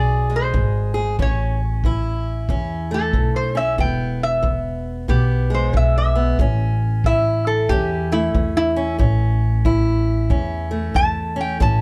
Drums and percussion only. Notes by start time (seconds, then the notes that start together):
0.54 kick
1.19 kick
1.84 kick
2.49 kick
3.13 kick
3.78 kick
4.44 kick
5.09 kick
5.74 kick
6.39 kick
7.04 kick
7.69 kick
8.35 kick
8.99 kick
9.65 kick
10.30 kick
10.95 kick
11.60 kick